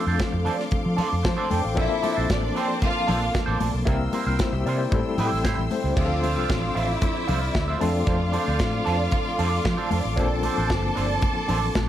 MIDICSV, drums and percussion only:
0, 0, Header, 1, 2, 480
1, 0, Start_track
1, 0, Key_signature, -1, "minor"
1, 0, Tempo, 525394
1, 1614, Time_signature, 4, 2, 24, 8
1, 10859, End_track
2, 0, Start_track
2, 0, Title_t, "Drums"
2, 177, Note_on_c, 9, 63, 68
2, 179, Note_on_c, 9, 36, 110
2, 179, Note_on_c, 9, 42, 60
2, 185, Note_on_c, 9, 38, 107
2, 268, Note_off_c, 9, 63, 0
2, 270, Note_off_c, 9, 42, 0
2, 271, Note_off_c, 9, 36, 0
2, 277, Note_off_c, 9, 38, 0
2, 422, Note_on_c, 9, 46, 47
2, 513, Note_off_c, 9, 46, 0
2, 544, Note_on_c, 9, 38, 31
2, 635, Note_off_c, 9, 38, 0
2, 649, Note_on_c, 9, 42, 62
2, 657, Note_on_c, 9, 36, 102
2, 660, Note_on_c, 9, 62, 53
2, 740, Note_off_c, 9, 42, 0
2, 748, Note_off_c, 9, 36, 0
2, 752, Note_off_c, 9, 62, 0
2, 896, Note_on_c, 9, 46, 74
2, 899, Note_on_c, 9, 62, 38
2, 899, Note_on_c, 9, 64, 80
2, 987, Note_off_c, 9, 46, 0
2, 991, Note_off_c, 9, 62, 0
2, 991, Note_off_c, 9, 64, 0
2, 1140, Note_on_c, 9, 36, 109
2, 1141, Note_on_c, 9, 38, 120
2, 1141, Note_on_c, 9, 42, 56
2, 1143, Note_on_c, 9, 63, 73
2, 1232, Note_off_c, 9, 36, 0
2, 1232, Note_off_c, 9, 42, 0
2, 1233, Note_off_c, 9, 38, 0
2, 1234, Note_off_c, 9, 63, 0
2, 1377, Note_on_c, 9, 63, 78
2, 1380, Note_on_c, 9, 46, 67
2, 1468, Note_off_c, 9, 63, 0
2, 1472, Note_off_c, 9, 46, 0
2, 1619, Note_on_c, 9, 36, 112
2, 1620, Note_on_c, 9, 42, 57
2, 1710, Note_off_c, 9, 36, 0
2, 1711, Note_off_c, 9, 42, 0
2, 1859, Note_on_c, 9, 46, 60
2, 1862, Note_on_c, 9, 62, 58
2, 1950, Note_off_c, 9, 46, 0
2, 1953, Note_off_c, 9, 62, 0
2, 2099, Note_on_c, 9, 42, 67
2, 2101, Note_on_c, 9, 36, 110
2, 2101, Note_on_c, 9, 63, 61
2, 2105, Note_on_c, 9, 38, 110
2, 2190, Note_off_c, 9, 42, 0
2, 2192, Note_off_c, 9, 36, 0
2, 2192, Note_off_c, 9, 63, 0
2, 2197, Note_off_c, 9, 38, 0
2, 2343, Note_on_c, 9, 46, 54
2, 2434, Note_off_c, 9, 46, 0
2, 2575, Note_on_c, 9, 42, 61
2, 2577, Note_on_c, 9, 36, 103
2, 2589, Note_on_c, 9, 62, 54
2, 2666, Note_off_c, 9, 42, 0
2, 2668, Note_off_c, 9, 36, 0
2, 2681, Note_off_c, 9, 62, 0
2, 2814, Note_on_c, 9, 46, 73
2, 2821, Note_on_c, 9, 64, 89
2, 2906, Note_off_c, 9, 46, 0
2, 2913, Note_off_c, 9, 64, 0
2, 3056, Note_on_c, 9, 63, 81
2, 3058, Note_on_c, 9, 36, 110
2, 3059, Note_on_c, 9, 38, 107
2, 3059, Note_on_c, 9, 42, 60
2, 3148, Note_off_c, 9, 63, 0
2, 3149, Note_off_c, 9, 36, 0
2, 3150, Note_off_c, 9, 42, 0
2, 3151, Note_off_c, 9, 38, 0
2, 3292, Note_on_c, 9, 46, 69
2, 3293, Note_on_c, 9, 63, 78
2, 3384, Note_off_c, 9, 46, 0
2, 3384, Note_off_c, 9, 63, 0
2, 3534, Note_on_c, 9, 42, 66
2, 3536, Note_on_c, 9, 36, 112
2, 3626, Note_off_c, 9, 42, 0
2, 3627, Note_off_c, 9, 36, 0
2, 3771, Note_on_c, 9, 62, 57
2, 3774, Note_on_c, 9, 46, 58
2, 3862, Note_off_c, 9, 62, 0
2, 3866, Note_off_c, 9, 46, 0
2, 4011, Note_on_c, 9, 63, 69
2, 4012, Note_on_c, 9, 42, 60
2, 4017, Note_on_c, 9, 36, 114
2, 4018, Note_on_c, 9, 38, 107
2, 4102, Note_off_c, 9, 63, 0
2, 4103, Note_off_c, 9, 42, 0
2, 4108, Note_off_c, 9, 36, 0
2, 4110, Note_off_c, 9, 38, 0
2, 4262, Note_on_c, 9, 46, 48
2, 4354, Note_off_c, 9, 46, 0
2, 4494, Note_on_c, 9, 42, 64
2, 4495, Note_on_c, 9, 36, 107
2, 4497, Note_on_c, 9, 62, 47
2, 4586, Note_off_c, 9, 42, 0
2, 4587, Note_off_c, 9, 36, 0
2, 4589, Note_off_c, 9, 62, 0
2, 4731, Note_on_c, 9, 64, 82
2, 4735, Note_on_c, 9, 46, 76
2, 4823, Note_off_c, 9, 64, 0
2, 4826, Note_off_c, 9, 46, 0
2, 4973, Note_on_c, 9, 63, 77
2, 4976, Note_on_c, 9, 36, 109
2, 4979, Note_on_c, 9, 38, 106
2, 4979, Note_on_c, 9, 42, 64
2, 5064, Note_off_c, 9, 63, 0
2, 5067, Note_off_c, 9, 36, 0
2, 5070, Note_off_c, 9, 38, 0
2, 5070, Note_off_c, 9, 42, 0
2, 5214, Note_on_c, 9, 46, 68
2, 5217, Note_on_c, 9, 63, 73
2, 5306, Note_off_c, 9, 46, 0
2, 5308, Note_off_c, 9, 63, 0
2, 5453, Note_on_c, 9, 36, 117
2, 5455, Note_on_c, 9, 49, 80
2, 5544, Note_off_c, 9, 36, 0
2, 5546, Note_off_c, 9, 49, 0
2, 5696, Note_on_c, 9, 46, 58
2, 5701, Note_on_c, 9, 62, 52
2, 5787, Note_off_c, 9, 46, 0
2, 5792, Note_off_c, 9, 62, 0
2, 5935, Note_on_c, 9, 42, 65
2, 5935, Note_on_c, 9, 63, 62
2, 5936, Note_on_c, 9, 36, 125
2, 5941, Note_on_c, 9, 38, 104
2, 6026, Note_off_c, 9, 42, 0
2, 6026, Note_off_c, 9, 63, 0
2, 6027, Note_off_c, 9, 36, 0
2, 6032, Note_off_c, 9, 38, 0
2, 6184, Note_on_c, 9, 46, 54
2, 6276, Note_off_c, 9, 46, 0
2, 6410, Note_on_c, 9, 42, 64
2, 6414, Note_on_c, 9, 36, 102
2, 6424, Note_on_c, 9, 62, 50
2, 6501, Note_off_c, 9, 42, 0
2, 6505, Note_off_c, 9, 36, 0
2, 6515, Note_off_c, 9, 62, 0
2, 6653, Note_on_c, 9, 46, 72
2, 6662, Note_on_c, 9, 62, 39
2, 6662, Note_on_c, 9, 64, 86
2, 6745, Note_off_c, 9, 46, 0
2, 6753, Note_off_c, 9, 62, 0
2, 6753, Note_off_c, 9, 64, 0
2, 6896, Note_on_c, 9, 36, 110
2, 6896, Note_on_c, 9, 63, 76
2, 6898, Note_on_c, 9, 38, 108
2, 6898, Note_on_c, 9, 42, 54
2, 6987, Note_off_c, 9, 36, 0
2, 6988, Note_off_c, 9, 63, 0
2, 6989, Note_off_c, 9, 38, 0
2, 6989, Note_off_c, 9, 42, 0
2, 7137, Note_on_c, 9, 46, 67
2, 7138, Note_on_c, 9, 63, 68
2, 7228, Note_off_c, 9, 46, 0
2, 7229, Note_off_c, 9, 63, 0
2, 7370, Note_on_c, 9, 42, 65
2, 7373, Note_on_c, 9, 36, 106
2, 7461, Note_off_c, 9, 42, 0
2, 7465, Note_off_c, 9, 36, 0
2, 7615, Note_on_c, 9, 46, 63
2, 7619, Note_on_c, 9, 62, 54
2, 7706, Note_off_c, 9, 46, 0
2, 7710, Note_off_c, 9, 62, 0
2, 7849, Note_on_c, 9, 42, 63
2, 7855, Note_on_c, 9, 36, 121
2, 7855, Note_on_c, 9, 38, 101
2, 7859, Note_on_c, 9, 63, 59
2, 7940, Note_off_c, 9, 42, 0
2, 7946, Note_off_c, 9, 36, 0
2, 7947, Note_off_c, 9, 38, 0
2, 7951, Note_off_c, 9, 63, 0
2, 8099, Note_on_c, 9, 46, 46
2, 8191, Note_off_c, 9, 46, 0
2, 8328, Note_on_c, 9, 42, 63
2, 8334, Note_on_c, 9, 36, 106
2, 8342, Note_on_c, 9, 62, 52
2, 8419, Note_off_c, 9, 42, 0
2, 8425, Note_off_c, 9, 36, 0
2, 8433, Note_off_c, 9, 62, 0
2, 8578, Note_on_c, 9, 46, 74
2, 8583, Note_on_c, 9, 62, 40
2, 8670, Note_off_c, 9, 46, 0
2, 8675, Note_off_c, 9, 62, 0
2, 8816, Note_on_c, 9, 63, 78
2, 8818, Note_on_c, 9, 36, 110
2, 8821, Note_on_c, 9, 38, 119
2, 8821, Note_on_c, 9, 42, 55
2, 8907, Note_off_c, 9, 63, 0
2, 8909, Note_off_c, 9, 36, 0
2, 8912, Note_off_c, 9, 38, 0
2, 8912, Note_off_c, 9, 42, 0
2, 9052, Note_on_c, 9, 63, 80
2, 9056, Note_on_c, 9, 46, 68
2, 9143, Note_off_c, 9, 63, 0
2, 9147, Note_off_c, 9, 46, 0
2, 9295, Note_on_c, 9, 42, 60
2, 9296, Note_on_c, 9, 36, 116
2, 9386, Note_off_c, 9, 42, 0
2, 9387, Note_off_c, 9, 36, 0
2, 9529, Note_on_c, 9, 62, 56
2, 9532, Note_on_c, 9, 46, 61
2, 9620, Note_off_c, 9, 62, 0
2, 9623, Note_off_c, 9, 46, 0
2, 9773, Note_on_c, 9, 42, 66
2, 9773, Note_on_c, 9, 63, 64
2, 9777, Note_on_c, 9, 36, 112
2, 9779, Note_on_c, 9, 38, 105
2, 9864, Note_off_c, 9, 42, 0
2, 9864, Note_off_c, 9, 63, 0
2, 9868, Note_off_c, 9, 36, 0
2, 9871, Note_off_c, 9, 38, 0
2, 10021, Note_on_c, 9, 46, 50
2, 10113, Note_off_c, 9, 46, 0
2, 10248, Note_on_c, 9, 42, 60
2, 10255, Note_on_c, 9, 36, 119
2, 10262, Note_on_c, 9, 62, 48
2, 10340, Note_off_c, 9, 42, 0
2, 10347, Note_off_c, 9, 36, 0
2, 10353, Note_off_c, 9, 62, 0
2, 10493, Note_on_c, 9, 46, 78
2, 10497, Note_on_c, 9, 64, 84
2, 10585, Note_off_c, 9, 46, 0
2, 10588, Note_off_c, 9, 64, 0
2, 10738, Note_on_c, 9, 36, 110
2, 10738, Note_on_c, 9, 42, 58
2, 10739, Note_on_c, 9, 38, 112
2, 10742, Note_on_c, 9, 63, 82
2, 10829, Note_off_c, 9, 36, 0
2, 10830, Note_off_c, 9, 38, 0
2, 10830, Note_off_c, 9, 42, 0
2, 10834, Note_off_c, 9, 63, 0
2, 10859, End_track
0, 0, End_of_file